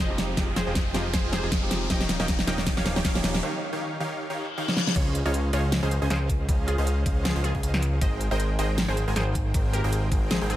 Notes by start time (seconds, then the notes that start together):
Already playing: riser
0.00 F1 F3 F4 G#4 C5 D#5 G5
0.08 F3 G#3 C4 D#4 G4
0.18 snare, closed hi-hat
0.36 F1 F3 G#3 C4 D#4 F4 G4 G#4 D#5 G5, kick, snare, closed hi-hat
0.56 G#4 C5, snare, closed hi-hat
0.66 F1 F3 G#3 C4 D#4 F4 G4 G#4 D#5 G5
0.75 kick, snare, closed hi-hat
0.93 F1 F3 G#3 C4 D#4 F4 G4 G#4 D#5 G5, snare, closed hi-hat
1.13 G#4 C5, kick, snare, closed hi-hat
1.24 F1 F3 F4 G#4 D#5 G5
1.32 F3 G#3 C4 D#4 G4 G#4 C5, snare, closed hi-hat
1.43 F1 F3 F4 G#4 D#5 G#5
1.52 F1 F4 G#4 D#5 G5, kick, snare, closed hi-hat
1.61 F3 G#3 C4 D#4 G4
1.71 snare, closed hi-hat
1.89 D#1 D#3 F3 A#3 C#4 D#4 G4 C#5 D#5 F5 G5, kick, snare, closed hi-hat
2.01 snare
2.09 snare, closed hi-hat
2.19 D#1 D#3 F3 A#3 C#4 D#4 G4 C#5 D#5 F5 G5, snare
2.28 kick, snare, closed hi-hat
2.39 snare
2.46 D#1 D#3 F3 A#3 C#4 D#4 G4 C#5 D#5 F5 G5, snare, closed hi-hat
2.58 snare
2.66 kick, snare, closed hi-hat
2.77 D#1 D#3 D#4 G4 C#5 F5, snare
2.84 F3 A#3 C#4 D#4 G4, snare, closed hi-hat
2.96 D#1 D#3 D#4 G4 C#5 G5, snare
3.05 D#1 D#3 D#4 G4 C#5 F5, kick, snare, closed hi-hat
3.14 F3 A#3 C#4 D#4 G4, snare
3.24 snare, closed hi-hat
3.34 snare
3.43 D#3 D#4 G4 C#5 F5
3.73 D#3 D#4 G4 C#5 F5
4.00 D#3 D#4 G4 C#5 F5
4.19 reverse cymbal
4.30 D#3 D#4 G4 C#5 F5
4.58 D#3 D#4 G4 C#5 F5
4.68 snare
4.77 snare
4.87 snare
4.96 C#2 C#4 F4 G#4 C5 C#5 D#5 F5, kick, closed hi-hat, crash
5.15 closed hi-hat
5.25 C#2 C#4 F4 G#4 C5 C#5 D#5 F5
5.34 closed hi-hat
5.53 C#2 C#4 F4 G#4 C5 C#5 D#5 F5, closed hi-hat
5.72 snare, closed hi-hat
5.83 C#2 C#4 G#4 C5 D#5 F5
5.91 closed hi-hat
6.02 C#2 C#4 G#4 C5 D#5 G#5
6.10 C#2 C#4 G#4 C5 D#5 F5, snare, closed hi-hat
6.29 kick, closed hi-hat
6.49 C#2 C#4 G#4 C5 D#5 F5, kick, closed hi-hat
6.68 F4 G#4, closed hi-hat
6.78 C#2 C#4 G#4 C5 D#5 F5
6.87 closed hi-hat
7.06 C#2 C#4 G#4 C5 D#5 F5, kick, closed hi-hat
7.25 F4 G#4, snare, closed hi-hat
7.36 C#2 C#4 G#4 C5 D#5 F5
7.44 F4 G#4, closed hi-hat
7.55 C#2 C#4 G#4 C5 D#5 G#5, kick
7.63 C#2 C#4 G#4 C5 D#5 F5, closed hi-hat
7.74 snare
7.82 closed hi-hat
8.01 G#1 G#3 G#4 A#4 C5 D#5 G5, kick, closed hi-hat
8.21 closed hi-hat
8.31 G#1 G#3 G#4 A#4 C5 D#5 G5
8.40 closed hi-hat
8.59 G#1 G#3 G#4 A#4 C5 D#5 G5, closed hi-hat
8.78 snare, closed hi-hat
8.88 G#1 G#3 G#4 A#4 C5 G5
8.97 closed hi-hat
9.08 G#1 G#3 G#4 A#4 C5 G#5
9.16 G#1 G#3 G#4 A#4 C5 G5, snare, closed hi-hat
9.35 kick, closed hi-hat
9.54 G#1 G#3 G#4 A#4 C5 G5, kick, closed hi-hat
9.73 G4 A#4, closed hi-hat
9.84 G#1 G#3 G#4 A#4 C5 G5
9.93 closed hi-hat
10.12 G#1 G#3 G#4 A#4 C5 G5, kick, closed hi-hat
10.31 C4 G#4, snare, closed hi-hat
10.41 G#1 G#3 G#4 A#4 C5 G5
10.50 C4 G#4, closed hi-hat